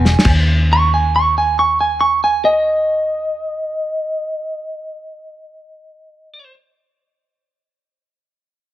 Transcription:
Already playing: fingered electric bass E1, clean electric guitar G#5
0.05 snare
0.19 snare
0.25 fingered electric bass D#2, kick, crash
0.73 clean electric guitar C#6
0.94 clean electric guitar G#5
1.16 clean electric guitar C#6
1.38 clean electric guitar G#5
1.59 clean electric guitar C#6
1.80 clean electric guitar G#5
2.01 clean electric guitar C#6
2.24 clean electric guitar G#5
2.45 clean electric guitar D#5

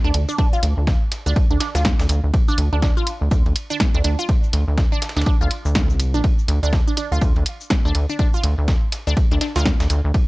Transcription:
0.04 analog synth bass D2, synth arpeggio sound D4
0.14 analog synth bass D2, closed hi-hat, ride
0.29 synth arpeggio sound D4, cabasa
0.39 synth arpeggio sound D4, kick, ride
0.53 synth arpeggio sound F4, cabasa
0.63 analog synth bass D2, snare, closed hi-hat, ride
0.77 analog synth bass D2
0.87 kick, snare, ride
1.12 snare, closed hi-hat, ride, cabasa
1.26 analog synth bass D2, synth arpeggio sound D4, snare
1.36 kick, ride
1.51 analog synth bass D2, synth arpeggio sound D4
1.60 synth arpeggio sound D4, snare, closed hi-hat, ride
1.75 analog synth bass D2, synth arpeggio sound F4, snare, ride, cabasa
1.85 kick, snare, ride
1.99 analog synth bass D2, snare, ride, cabasa
2.09 analog synth bass D2, closed hi-hat, ride, cabasa
2.24 analog synth bass D2
2.34 kick, ride
2.48 synth arpeggio sound D4, cabasa
2.58 analog synth bass D2, closed hi-hat, ride
2.73 analog synth bass D2, synth arpeggio sound D4
2.82 synth arpeggio sound D4, kick, snare, ride
2.97 synth arpeggio sound F4
3.07 closed hi-hat, ride, cabasa
3.21 analog synth bass D2
3.31 analog synth bass D2, kick, ride, cabasa
3.46 analog synth bass D2, ride
3.56 closed hi-hat, ride, cabasa
3.70 synth arpeggio sound D4, cabasa
3.80 kick, snare, ride
3.94 analog synth bass D2, synth arpeggio sound D4
4.04 analog synth bass D2, synth arpeggio sound D4, closed hi-hat, ride
4.19 synth arpeggio sound F4, cabasa
4.29 kick, ride
4.43 cabasa
4.53 analog synth bass D2, snare, closed hi-hat, ride
4.68 analog synth bass D2
4.78 kick, snare, ride
4.92 synth arpeggio sound D4
5.02 snare, closed hi-hat, ride, cabasa
5.09 snare, ride
5.17 analog synth bass D2, synth arpeggio sound D4, snare, ride
5.21 snare, ride
5.26 synth arpeggio sound D4, kick, ride
5.41 analog synth bass D2, synth arpeggio sound F4
5.51 closed hi-hat, ride
5.65 analog synth bass D2, cabasa
5.75 kick, snare, ride
5.90 analog synth bass C2, cabasa
6.00 closed hi-hat, ride, cabasa
6.14 analog synth bass A1, synth arpeggio sound D4
6.24 kick, ride
6.39 cabasa
6.48 analog synth bass D2, closed hi-hat, ride
6.63 analog synth bass D2, synth arpeggio sound D4
6.73 kick, snare, ride
6.88 synth arpeggio sound D4
6.97 synth arpeggio sound D4, closed hi-hat, ride, cabasa
7.12 analog synth bass D2, synth arpeggio sound F4
7.21 analog synth bass D2, kick, ride, cabasa
7.36 analog synth bass D2, ride
7.46 closed hi-hat, ride, cabasa
7.61 cabasa
7.70 kick, snare, ride
7.85 analog synth bass D2, synth arpeggio sound D4
7.95 analog synth bass D2, closed hi-hat, ride
8.09 synth arpeggio sound D4, cabasa
8.19 synth arpeggio sound D4, kick, ride
8.34 synth arpeggio sound F4, cabasa
8.43 analog synth bass D2, snare, closed hi-hat, ride
8.58 analog synth bass D2
8.68 kick, snare, ride
8.92 snare, closed hi-hat, ride, cabasa
9.07 analog synth bass D2, synth arpeggio sound D4, snare
9.17 kick, ride
9.31 analog synth bass D2, synth arpeggio sound D4
9.41 synth arpeggio sound D4, snare, closed hi-hat, ride
9.56 analog synth bass D2, synth arpeggio sound F4, snare, ride, cabasa
9.66 kick, snare, ride
9.80 analog synth bass D2, snare, ride, cabasa
9.90 analog synth bass D2, closed hi-hat, ride, cabasa
10.05 analog synth bass D2
10.14 kick, ride

